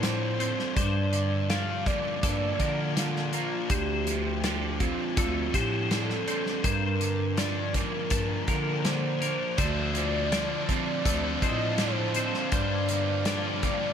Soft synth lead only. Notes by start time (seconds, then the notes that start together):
0.03 C5
0.75 D5
1.49 F5
1.87 D5
2.97 F4
3.70 G4
4.82 F4
5.55 G4
5.90 A4
6.64 A#4
7.38 D5
7.75 A#4
8.85 C5
9.58 D5
10.69 D5
11.43 D#5
11.79 C5
12.52 D5
13.63 D5